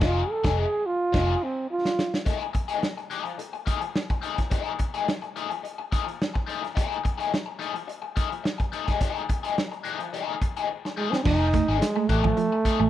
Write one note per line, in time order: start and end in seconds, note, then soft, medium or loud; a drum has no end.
0.01 0.21 F1 loud
0.01 0.21 F3 loud
0.01 0.21 A3 loud
0.01 0.21 D#4 loud
0.01 0.32 F4 loud
0.01 0.22 G#4 loud
0.01 kick loud
0.01 snare loud
0.01 crash medium
0.30 0.60 A4 medium
0.44 0.63 F1 loud
0.44 0.64 F3 loud
0.44 0.64 A3 loud
0.44 0.63 D#4 loud
0.44 0.63 G#4 loud
0.44 kick loud
0.44 snare loud
0.59 0.88 G#4 loud
0.86 1.45 F4 loud
1.12 1.33 F1 loud
1.12 1.33 F3 loud
1.12 1.33 A3 loud
1.12 1.33 D#4 loud
1.12 1.33 G#4 loud
1.12 kick loud
1.12 snare loud
1.12 crash medium
1.43 1.71 C4 medium
1.71 2.23 F4 medium
1.85 snare medium
1.99 snare medium
2.14 snare medium
2.25 2.41 F3 medium
2.25 2.41 A3 medium
2.25 2.41 D#4 medium
2.25 2.42 G#4 medium
2.25 kick loud
2.25 closed hi-hat medium
2.40 closed hi-hat soft
2.53 muted overdriven electric guitar stroke soft
2.53 kick medium
2.53 closed hi-hat medium
2.68 2.80 F3 soft
2.68 2.80 A3 medium
2.68 2.80 D#4 medium
2.68 2.79 G#4 medium
2.68 closed hi-hat medium
2.82 muted overdriven electric guitar stroke soft
2.82 snare loud
2.97 muted overdriven electric guitar stroke soft
2.97 closed hi-hat soft
3.10 3.31 F3 medium
3.10 3.24 A3 medium
3.10 3.24 D#4 medium
3.10 3.23 G#4 medium
3.10 closed hi-hat medium
3.24 muted overdriven electric guitar stroke soft
3.24 closed hi-hat soft
3.38 muted overdriven electric guitar stroke soft
3.38 closed hi-hat medium
3.53 muted overdriven electric guitar stroke soft
3.53 closed hi-hat soft
3.66 3.82 F3 medium
3.66 3.81 A3 medium
3.66 3.80 D#4 medium
3.66 3.79 G#4 medium
3.66 kick medium
3.66 closed hi-hat medium
3.81 muted overdriven electric guitar stroke soft
3.81 closed hi-hat soft
3.96 snare loud
4.10 muted overdriven electric guitar stroke soft
4.10 kick medium
4.10 closed hi-hat soft
4.22 4.38 F3 medium
4.22 4.36 A3 medium
4.22 4.36 D#4 medium
4.22 4.35 G#4 medium
4.22 closed hi-hat medium
4.36 muted overdriven electric guitar stroke soft
4.36 kick medium
4.36 snare soft
4.36 closed hi-hat soft
4.50 4.71 F3 medium
4.50 4.72 A3 medium
4.50 4.72 D#4 medium
4.50 4.72 G#4 medium
4.50 kick loud
4.50 closed hi-hat medium
4.65 closed hi-hat soft
4.79 muted overdriven electric guitar stroke soft
4.79 kick medium
4.79 closed hi-hat medium
4.94 5.05 F3 soft
4.94 5.05 A3 medium
4.94 5.05 D#4 soft
4.94 5.05 G#4 medium
4.94 closed hi-hat medium
5.08 muted overdriven electric guitar stroke soft
5.08 snare loud
5.22 muted overdriven electric guitar stroke soft
5.22 closed hi-hat soft
5.36 5.51 F3 medium
5.36 5.50 A3 medium
5.36 5.49 D#4 medium
5.36 5.49 G#4 medium
5.36 closed hi-hat medium
5.50 muted overdriven electric guitar stroke soft
5.50 closed hi-hat soft
5.63 muted overdriven electric guitar stroke soft
5.63 closed hi-hat medium
5.78 muted overdriven electric guitar stroke soft
5.92 6.07 F3 medium
5.92 6.05 A3 medium
5.92 6.05 D#4 medium
5.92 6.04 G#4 medium
5.92 kick medium
5.92 closed hi-hat medium
6.05 muted overdriven electric guitar stroke medium
6.05 closed hi-hat soft
6.22 snare loud
6.34 muted overdriven electric guitar stroke soft
6.34 kick medium
6.46 6.63 F3 medium
6.46 6.63 A3 medium
6.46 6.62 D#4 medium
6.46 6.62 G#4 medium
6.46 closed hi-hat medium
6.63 muted overdriven electric guitar stroke soft
6.63 snare soft
6.63 closed hi-hat soft
6.75 6.96 F3 medium
6.75 6.97 A3 medium
6.75 6.97 D#4 medium
6.75 6.97 G#4 medium
6.75 kick loud
6.75 closed hi-hat medium
6.92 closed hi-hat soft
7.04 muted overdriven electric guitar stroke soft
7.04 kick medium
7.04 closed hi-hat medium
7.18 7.30 F3 medium
7.18 7.29 A3 soft
7.18 7.29 D#4 medium
7.18 7.29 G#4 soft
7.18 closed hi-hat medium
7.32 muted overdriven electric guitar stroke soft
7.32 snare loud
7.46 muted overdriven electric guitar stroke soft
7.59 7.75 F3 medium
7.59 7.74 A3 medium
7.59 7.73 D#4 medium
7.59 7.73 G#4 medium
7.59 closed hi-hat medium
7.74 muted overdriven electric guitar stroke medium
7.74 closed hi-hat medium
7.87 muted overdriven electric guitar stroke soft
7.87 closed hi-hat medium
8.02 muted overdriven electric guitar stroke soft
8.16 8.32 F3 medium
8.16 8.29 A3 medium
8.16 8.29 D#4 medium
8.16 8.29 G#4 medium
8.16 kick medium
8.16 closed hi-hat medium
8.30 muted overdriven electric guitar stroke soft
8.30 closed hi-hat soft
8.43 muted overdriven electric guitar stroke soft
8.43 snare medium
8.58 muted overdriven electric guitar stroke soft
8.58 kick medium
8.58 closed hi-hat soft
8.72 8.85 F3 medium
8.72 8.85 A3 medium
8.72 8.85 D#4 medium
8.72 8.86 G#4 medium
8.72 closed hi-hat medium
8.87 8.99 F3 medium
8.87 8.99 A3 medium
8.87 8.99 D#4 medium
8.87 8.98 G#4 medium
8.87 kick medium
8.87 snare soft
8.87 closed hi-hat soft
9.01 9.22 F3 medium
9.01 9.22 A3 medium
9.01 9.22 D#4 medium
9.01 9.22 G#4 medium
9.01 kick loud
9.01 closed hi-hat medium
9.29 muted overdriven electric guitar stroke soft
9.29 kick medium
9.29 closed hi-hat medium
9.43 9.55 F3 soft
9.43 9.55 A3 medium
9.43 9.55 D#4 medium
9.43 9.54 G#4 medium
9.43 closed hi-hat medium
9.56 muted overdriven electric guitar stroke soft
9.56 snare loud
9.71 muted overdriven electric guitar stroke soft
9.71 closed hi-hat soft
9.84 10.05 F3 medium
9.84 9.99 A3 medium
9.84 9.99 D#4 medium
9.84 9.99 G#4 medium
9.84 closed hi-hat medium
10.00 muted overdriven electric guitar stroke medium
10.00 closed hi-hat medium
10.13 10.34 F3 medium
10.13 10.34 A3 medium
10.13 10.34 D#4 medium
10.13 10.35 G#4 medium
10.13 closed hi-hat medium
10.42 muted overdriven electric guitar stroke soft
10.42 kick medium
10.42 closed hi-hat medium
10.57 10.68 F3 medium
10.57 10.67 A3 medium
10.57 10.67 D#4 medium
10.57 10.67 G#4 medium
10.57 closed hi-hat medium
10.85 muted overdriven electric guitar stroke soft
10.85 snare medium
10.97 11.12 F3 medium
10.97 11.12 G#3 medium
10.97 11.11 A3 medium
10.97 11.11 D#4 medium
10.97 11.11 G#4 medium
11.11 11.23 C4 medium
11.11 muted overdriven electric guitar stroke soft
11.11 snare medium
11.23 11.60 F1 loud
11.23 11.46 F3 medium
11.23 11.37 F3 medium
11.23 11.47 A3 medium
11.23 11.80 D#4 loud
11.23 11.47 D#4 medium
11.23 11.47 G#4 medium
11.23 kick loud
11.23 crash loud
11.41 muted clean electric guitar stroke medium
11.53 11.65 A3 medium
11.53 muted overdriven electric guitar stroke soft
11.53 kick medium
11.53 closed hi-hat medium
11.68 11.79 G#1 medium
11.68 11.79 F3 medium
11.68 11.79 A3 medium
11.68 11.79 D#4 medium
11.68 11.79 G#4 medium
11.68 snare soft
11.79 12.09 G#3 loud
11.79 muted overdriven electric guitar stroke medium
11.79 snare loud
11.79 closed hi-hat loud
11.95 12.06 A3 medium
11.95 muted overdriven electric guitar stroke soft
12.08 12.31 A1 medium
12.08 12.30 F3 medium
12.08 12.90 A3 loud
12.08 12.23 A3 medium
12.08 12.23 D#4 loud
12.08 12.22 G#4 loud
12.08 muted clean electric guitar stroke soft
12.08 kick medium
12.08 closed hi-hat medium
12.24 12.34 F3 medium
12.24 muted overdriven electric guitar stroke medium
12.24 kick loud
12.37 12.48 F3 medium
12.37 muted overdriven electric guitar stroke soft
12.37 closed hi-hat medium
12.52 muted overdriven electric guitar stroke soft
12.65 12.80 F3 medium
12.65 12.80 A3 medium
12.65 12.80 D#4 loud
12.65 12.80 G#4 loud
12.65 muted fingered electric bass stroke medium
12.65 muted clean electric guitar stroke medium
12.65 kick medium
12.65 closed hi-hat medium
12.80 12.90 A1 medium
12.80 12.90 A3 loud
12.80 muted overdriven electric guitar stroke medium